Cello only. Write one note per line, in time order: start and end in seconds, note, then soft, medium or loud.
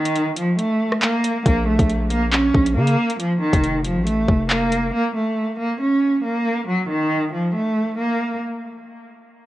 0.00 0.34 D#3 medium
0.37 0.55 F3 medium
0.59 1.00 A3 medium
1.02 1.43 A#3 medium
1.46 1.63 A#3 medium
1.67 2.08 A3 medium
2.11 2.28 A#3 medium
2.33 2.74 C#4 medium
2.76 3.17 A#3 medium
3.20 3.37 F3 medium
3.41 3.82 D#3 medium
3.85 4.02 F3 medium
4.06 4.47 A3 medium
4.50 4.91 A#3 medium
4.94 5.11 A#3 medium
5.15 5.56 A3 medium
5.59 5.76 A#3 medium
5.80 6.21 C#4 medium
6.24 6.65 A#3 medium
6.67 6.85 F#3 medium
6.89 7.30 D#3 medium
7.33 7.50 F3 medium
7.55 7.95 A3 medium
7.98 8.39 A#3 medium